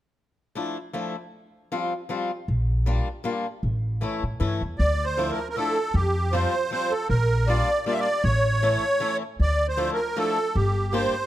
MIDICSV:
0, 0, Header, 1, 4, 480
1, 0, Start_track
1, 0, Key_signature, -1, "minor"
1, 0, Tempo, 384369
1, 207, Time_signature, 3, 2, 24, 8
1, 14066, End_track
2, 0, Start_track
2, 0, Title_t, "Accordion"
2, 0, Program_c, 0, 21
2, 5972, Note_on_c, 0, 74, 77
2, 6300, Note_on_c, 0, 72, 73
2, 6309, Note_off_c, 0, 74, 0
2, 6625, Note_on_c, 0, 70, 62
2, 6634, Note_off_c, 0, 72, 0
2, 6843, Note_off_c, 0, 70, 0
2, 6862, Note_on_c, 0, 70, 56
2, 6938, Note_on_c, 0, 69, 85
2, 6945, Note_off_c, 0, 70, 0
2, 7429, Note_on_c, 0, 67, 72
2, 7436, Note_off_c, 0, 69, 0
2, 7897, Note_on_c, 0, 72, 75
2, 7920, Note_off_c, 0, 67, 0
2, 8373, Note_off_c, 0, 72, 0
2, 8392, Note_on_c, 0, 72, 83
2, 8634, Note_on_c, 0, 69, 81
2, 8651, Note_off_c, 0, 72, 0
2, 8841, Note_off_c, 0, 69, 0
2, 8854, Note_on_c, 0, 70, 84
2, 9336, Note_on_c, 0, 74, 83
2, 9347, Note_off_c, 0, 70, 0
2, 9801, Note_off_c, 0, 74, 0
2, 9820, Note_on_c, 0, 74, 78
2, 9889, Note_on_c, 0, 76, 68
2, 9912, Note_off_c, 0, 74, 0
2, 9983, Note_on_c, 0, 74, 81
2, 9991, Note_off_c, 0, 76, 0
2, 10281, Note_on_c, 0, 73, 82
2, 10290, Note_off_c, 0, 74, 0
2, 11454, Note_off_c, 0, 73, 0
2, 11759, Note_on_c, 0, 74, 77
2, 12074, Note_off_c, 0, 74, 0
2, 12096, Note_on_c, 0, 72, 76
2, 12372, Note_off_c, 0, 72, 0
2, 12406, Note_on_c, 0, 70, 66
2, 12705, Note_on_c, 0, 69, 81
2, 12717, Note_off_c, 0, 70, 0
2, 13181, Note_on_c, 0, 67, 62
2, 13191, Note_off_c, 0, 69, 0
2, 13658, Note_on_c, 0, 72, 78
2, 13668, Note_off_c, 0, 67, 0
2, 14066, Note_off_c, 0, 72, 0
2, 14066, End_track
3, 0, Start_track
3, 0, Title_t, "Steel-string acoustic guitar"
3, 0, Program_c, 1, 25
3, 691, Note_on_c, 1, 53, 47
3, 697, Note_on_c, 1, 57, 41
3, 703, Note_on_c, 1, 62, 42
3, 709, Note_on_c, 1, 64, 49
3, 954, Note_off_c, 1, 57, 0
3, 954, Note_off_c, 1, 62, 0
3, 955, Note_off_c, 1, 53, 0
3, 955, Note_off_c, 1, 64, 0
3, 1167, Note_on_c, 1, 53, 42
3, 1173, Note_on_c, 1, 57, 35
3, 1176, Note_on_c, 1, 64, 47
3, 1183, Note_on_c, 1, 62, 42
3, 1432, Note_off_c, 1, 53, 0
3, 1432, Note_off_c, 1, 57, 0
3, 1432, Note_off_c, 1, 62, 0
3, 1435, Note_off_c, 1, 64, 0
3, 2144, Note_on_c, 1, 53, 51
3, 2149, Note_on_c, 1, 55, 43
3, 2153, Note_on_c, 1, 65, 55
3, 2157, Note_on_c, 1, 60, 37
3, 2400, Note_off_c, 1, 55, 0
3, 2401, Note_off_c, 1, 60, 0
3, 2402, Note_off_c, 1, 53, 0
3, 2403, Note_off_c, 1, 65, 0
3, 2610, Note_on_c, 1, 53, 48
3, 2620, Note_on_c, 1, 55, 45
3, 2625, Note_on_c, 1, 60, 43
3, 2628, Note_on_c, 1, 65, 46
3, 2874, Note_off_c, 1, 53, 0
3, 2874, Note_off_c, 1, 65, 0
3, 2875, Note_off_c, 1, 55, 0
3, 2875, Note_off_c, 1, 60, 0
3, 3574, Note_on_c, 1, 55, 46
3, 3582, Note_on_c, 1, 58, 43
3, 3585, Note_on_c, 1, 62, 47
3, 3589, Note_on_c, 1, 65, 49
3, 3835, Note_off_c, 1, 55, 0
3, 3835, Note_off_c, 1, 58, 0
3, 3835, Note_off_c, 1, 65, 0
3, 3838, Note_off_c, 1, 62, 0
3, 4044, Note_on_c, 1, 55, 45
3, 4050, Note_on_c, 1, 62, 39
3, 4057, Note_on_c, 1, 58, 41
3, 4059, Note_on_c, 1, 65, 52
3, 4310, Note_off_c, 1, 55, 0
3, 4311, Note_off_c, 1, 58, 0
3, 4313, Note_off_c, 1, 62, 0
3, 4314, Note_off_c, 1, 65, 0
3, 5007, Note_on_c, 1, 52, 44
3, 5018, Note_on_c, 1, 57, 47
3, 5025, Note_on_c, 1, 61, 37
3, 5034, Note_on_c, 1, 64, 48
3, 5277, Note_off_c, 1, 52, 0
3, 5278, Note_off_c, 1, 57, 0
3, 5278, Note_off_c, 1, 61, 0
3, 5278, Note_off_c, 1, 64, 0
3, 5493, Note_on_c, 1, 52, 48
3, 5501, Note_on_c, 1, 57, 42
3, 5501, Note_on_c, 1, 64, 50
3, 5510, Note_on_c, 1, 61, 34
3, 5760, Note_off_c, 1, 52, 0
3, 5761, Note_off_c, 1, 57, 0
3, 5762, Note_off_c, 1, 61, 0
3, 5763, Note_off_c, 1, 64, 0
3, 6460, Note_on_c, 1, 53, 50
3, 6464, Note_on_c, 1, 57, 41
3, 6476, Note_on_c, 1, 62, 40
3, 6485, Note_on_c, 1, 64, 52
3, 6725, Note_off_c, 1, 57, 0
3, 6726, Note_off_c, 1, 62, 0
3, 6726, Note_off_c, 1, 64, 0
3, 6727, Note_off_c, 1, 53, 0
3, 6950, Note_on_c, 1, 53, 44
3, 6952, Note_on_c, 1, 57, 45
3, 6962, Note_on_c, 1, 62, 37
3, 6969, Note_on_c, 1, 64, 39
3, 7209, Note_off_c, 1, 57, 0
3, 7209, Note_off_c, 1, 64, 0
3, 7210, Note_off_c, 1, 53, 0
3, 7210, Note_off_c, 1, 62, 0
3, 7902, Note_on_c, 1, 53, 53
3, 7905, Note_on_c, 1, 55, 43
3, 7916, Note_on_c, 1, 60, 49
3, 7925, Note_on_c, 1, 65, 55
3, 8162, Note_off_c, 1, 55, 0
3, 8163, Note_off_c, 1, 53, 0
3, 8163, Note_off_c, 1, 60, 0
3, 8164, Note_off_c, 1, 65, 0
3, 8377, Note_on_c, 1, 53, 46
3, 8385, Note_on_c, 1, 55, 40
3, 8395, Note_on_c, 1, 60, 39
3, 8399, Note_on_c, 1, 65, 47
3, 8640, Note_off_c, 1, 53, 0
3, 8641, Note_off_c, 1, 55, 0
3, 8641, Note_off_c, 1, 65, 0
3, 8642, Note_off_c, 1, 60, 0
3, 9334, Note_on_c, 1, 55, 50
3, 9347, Note_on_c, 1, 58, 42
3, 9352, Note_on_c, 1, 62, 43
3, 9362, Note_on_c, 1, 65, 58
3, 9595, Note_off_c, 1, 55, 0
3, 9595, Note_off_c, 1, 62, 0
3, 9597, Note_off_c, 1, 58, 0
3, 9597, Note_off_c, 1, 65, 0
3, 9817, Note_on_c, 1, 55, 50
3, 9820, Note_on_c, 1, 58, 35
3, 9827, Note_on_c, 1, 62, 42
3, 9833, Note_on_c, 1, 65, 42
3, 10073, Note_off_c, 1, 58, 0
3, 10073, Note_off_c, 1, 62, 0
3, 10073, Note_off_c, 1, 65, 0
3, 10075, Note_off_c, 1, 55, 0
3, 10773, Note_on_c, 1, 52, 54
3, 10776, Note_on_c, 1, 57, 42
3, 10781, Note_on_c, 1, 61, 45
3, 10787, Note_on_c, 1, 64, 50
3, 11031, Note_off_c, 1, 57, 0
3, 11031, Note_off_c, 1, 61, 0
3, 11031, Note_off_c, 1, 64, 0
3, 11032, Note_off_c, 1, 52, 0
3, 11240, Note_on_c, 1, 52, 58
3, 11248, Note_on_c, 1, 57, 51
3, 11258, Note_on_c, 1, 61, 44
3, 11264, Note_on_c, 1, 64, 51
3, 11508, Note_off_c, 1, 52, 0
3, 11508, Note_off_c, 1, 57, 0
3, 11508, Note_off_c, 1, 61, 0
3, 11509, Note_off_c, 1, 64, 0
3, 12203, Note_on_c, 1, 53, 57
3, 12210, Note_on_c, 1, 57, 41
3, 12211, Note_on_c, 1, 62, 40
3, 12217, Note_on_c, 1, 64, 52
3, 12467, Note_off_c, 1, 53, 0
3, 12468, Note_off_c, 1, 57, 0
3, 12469, Note_off_c, 1, 64, 0
3, 12470, Note_off_c, 1, 62, 0
3, 12693, Note_on_c, 1, 53, 53
3, 12697, Note_on_c, 1, 57, 46
3, 12709, Note_on_c, 1, 62, 40
3, 12716, Note_on_c, 1, 64, 42
3, 12952, Note_off_c, 1, 57, 0
3, 12953, Note_off_c, 1, 53, 0
3, 12953, Note_off_c, 1, 64, 0
3, 12954, Note_off_c, 1, 62, 0
3, 13646, Note_on_c, 1, 58, 43
3, 13656, Note_on_c, 1, 62, 41
3, 13659, Note_on_c, 1, 55, 52
3, 13663, Note_on_c, 1, 67, 55
3, 13907, Note_off_c, 1, 58, 0
3, 13909, Note_off_c, 1, 62, 0
3, 13909, Note_off_c, 1, 67, 0
3, 13912, Note_off_c, 1, 55, 0
3, 14066, End_track
4, 0, Start_track
4, 0, Title_t, "Upright bass"
4, 0, Program_c, 2, 32
4, 3099, Note_on_c, 2, 34, 69
4, 3722, Note_off_c, 2, 34, 0
4, 4532, Note_on_c, 2, 33, 68
4, 5016, Note_off_c, 2, 33, 0
4, 5283, Note_on_c, 2, 45, 46
4, 5482, Note_off_c, 2, 45, 0
4, 5500, Note_on_c, 2, 43, 55
4, 5736, Note_off_c, 2, 43, 0
4, 5758, Note_on_c, 2, 40, 45
4, 5960, Note_off_c, 2, 40, 0
4, 5986, Note_on_c, 2, 38, 78
4, 6611, Note_off_c, 2, 38, 0
4, 7418, Note_on_c, 2, 41, 86
4, 8041, Note_off_c, 2, 41, 0
4, 8860, Note_on_c, 2, 34, 76
4, 9479, Note_off_c, 2, 34, 0
4, 10288, Note_on_c, 2, 33, 85
4, 10912, Note_off_c, 2, 33, 0
4, 11733, Note_on_c, 2, 38, 71
4, 12356, Note_off_c, 2, 38, 0
4, 13180, Note_on_c, 2, 31, 81
4, 13798, Note_off_c, 2, 31, 0
4, 14066, End_track
0, 0, End_of_file